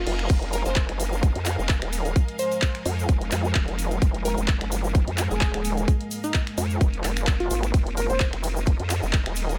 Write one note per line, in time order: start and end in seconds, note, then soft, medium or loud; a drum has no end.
0.00 0.26 G#3 medium
0.00 7.74 A#4 medium
0.00 7.74 D#5 medium
0.00 7.74 F5 medium
0.00 7.74 G#5 medium
0.00 reverse cymbal medium
0.06 0.28 F1 loud
0.06 0.15 F4 medium
0.06 open hi-hat loud
0.19 finger snap medium
0.19 closed hi-hat soft
0.30 0.64 F1 loud
0.30 9.58 G#3 medium
0.30 7.70 F4 medium
0.30 3.98 C5 medium
0.30 kick loud
0.30 closed hi-hat medium
0.30 crash medium
0.30 shaker soft
0.42 closed hi-hat medium
0.53 0.63 A#4 loud
0.53 open hi-hat loud
0.53 shaker medium
0.65 0.87 F1 medium
0.65 0.80 C5 medium
0.65 closed hi-hat soft
0.65 shaker medium
0.76 kick loud
0.76 clap loud
0.76 closed hi-hat medium
0.76 shaker soft
0.89 1.33 F#1 loud
0.89 finger snap medium
0.89 closed hi-hat medium
1.00 open hi-hat loud
1.00 shaker medium
1.12 shaker medium
1.23 kick loud
1.23 closed hi-hat medium
1.23 shaker soft
1.35 1.57 F2 loud
1.35 closed hi-hat medium
1.45 clap medium
1.45 open hi-hat loud
1.45 shaker loud
1.59 1.80 F1 loud
1.59 shaker soft
1.69 kick loud
1.69 clap loud
1.69 closed hi-hat medium
1.69 shaker soft
1.82 2.14 D#1 loud
1.82 finger snap medium
1.82 closed hi-hat medium
1.93 open hi-hat loud
1.93 shaker loud
2.05 closed hi-hat soft
2.05 shaker medium
2.16 kick loud
2.16 closed hi-hat medium
2.16 shaker soft
2.28 closed hi-hat medium
2.39 2.75 C5 loud
2.39 open hi-hat loud
2.39 shaker medium
2.52 closed hi-hat soft
2.52 shaker medium
2.62 kick loud
2.62 clap loud
2.62 closed hi-hat medium
2.62 shaker soft
2.75 finger snap medium
2.75 closed hi-hat medium
2.85 3.07 F2 loud
2.85 open hi-hat loud
2.85 shaker medium
2.99 shaker medium
3.09 3.30 F1 loud
3.09 kick loud
3.09 closed hi-hat medium
3.09 shaker soft
3.21 closed hi-hat medium
3.32 3.54 F2 loud
3.32 clap medium
3.32 open hi-hat loud
3.32 shaker loud
3.44 shaker soft
3.55 3.66 D#1 medium
3.55 kick loud
3.55 clap loud
3.55 closed hi-hat medium
3.55 shaker soft
3.68 4.00 F1 loud
3.68 closed hi-hat medium
3.79 open hi-hat loud
3.79 shaker loud
3.91 closed hi-hat soft
3.91 shaker medium
4.02 4.36 F1 loud
4.02 9.58 A#4 medium
4.02 kick loud
4.02 closed hi-hat medium
4.02 shaker soft
4.14 closed hi-hat medium
4.25 4.35 A#4 loud
4.25 open hi-hat loud
4.25 shaker medium
4.38 4.59 F1 loud
4.38 closed hi-hat soft
4.38 shaker medium
4.48 kick loud
4.48 clap loud
4.48 closed hi-hat medium
4.48 shaker soft
4.61 5.05 F#1 loud
4.61 finger snap medium
4.61 closed hi-hat medium
4.72 open hi-hat loud
4.72 shaker loud
4.84 shaker medium
4.95 kick loud
4.95 closed hi-hat medium
4.95 shaker soft
5.07 5.29 F2 loud
5.07 closed hi-hat medium
5.18 clap medium
5.18 open hi-hat loud
5.18 shaker loud
5.31 5.52 F1 loud
5.31 5.95 G#4 loud
5.31 shaker medium
5.41 kick loud
5.41 clap loud
5.41 closed hi-hat medium
5.41 shaker soft
5.54 5.86 D#1 loud
5.54 finger snap medium
5.54 closed hi-hat soft
5.65 open hi-hat loud
5.65 shaker medium
5.77 closed hi-hat soft
5.77 shaker medium
5.88 kick loud
5.88 closed hi-hat medium
5.88 shaker soft
6.01 closed hi-hat medium
6.11 open hi-hat loud
6.11 shaker medium
6.24 6.38 D#4 medium
6.24 closed hi-hat soft
6.24 shaker medium
6.34 kick loud
6.34 clap loud
6.34 closed hi-hat medium
6.34 shaker soft
6.47 finger snap medium
6.47 closed hi-hat medium
6.58 6.79 F2 loud
6.58 open hi-hat loud
6.58 shaker medium
6.70 shaker medium
6.81 7.02 F1 loud
6.81 kick loud
6.81 closed hi-hat medium
6.81 shaker soft
6.94 closed hi-hat medium
7.04 7.49 F1 loud
7.04 clap medium
7.04 open hi-hat loud
7.04 shaker loud
7.17 finger snap medium
7.17 closed hi-hat soft
7.17 shaker medium
7.27 kick loud
7.27 clap loud
7.27 closed hi-hat medium
7.27 shaker soft
7.40 7.47 F4 loud
7.40 closed hi-hat soft
7.51 7.72 G#1 loud
7.51 7.59 F4 medium
7.51 open hi-hat loud
7.51 shaker loud
7.63 finger snap medium
7.63 closed hi-hat soft
7.63 shaker medium
7.74 8.08 F1 loud
7.74 9.58 F#3 medium
7.74 9.58 F4 medium
7.74 kick loud
7.74 closed hi-hat medium
7.74 ride medium
7.74 shaker soft
7.87 closed hi-hat medium
7.97 8.07 A#4 medium
7.97 open hi-hat loud
7.97 ride medium
7.97 shaker medium
8.06 8.31 F1 loud
8.06 9.58 A#4 medium
8.06 8.24 C5 medium
8.06 closed hi-hat soft
8.06 shaker soft
8.17 9.58 D#5 medium
8.17 kick loud
8.17 clap loud
8.17 closed hi-hat medium
8.17 ride medium
8.17 shaker soft
8.33 8.78 F1 medium
8.33 finger snap medium
8.33 closed hi-hat soft
8.44 open hi-hat loud
8.44 ride medium
8.44 shaker medium
8.56 shaker medium
8.66 kick loud
8.66 closed hi-hat medium
8.66 ride medium
8.66 shaker soft
8.80 9.01 F2 loud
8.80 closed hi-hat medium
8.90 clap medium
8.90 open hi-hat loud
8.90 ride medium
8.90 shaker loud
8.98 9.58 G#5 medium
9.03 9.24 F1 loud
9.03 shaker medium
9.13 kick loud
9.13 clap loud
9.13 closed hi-hat medium
9.13 ride medium
9.13 shaker soft
9.26 9.58 D#1 loud
9.26 finger snap medium
9.26 closed hi-hat medium
9.36 open hi-hat loud
9.36 ride medium
9.36 shaker medium
9.49 closed hi-hat soft
9.49 shaker medium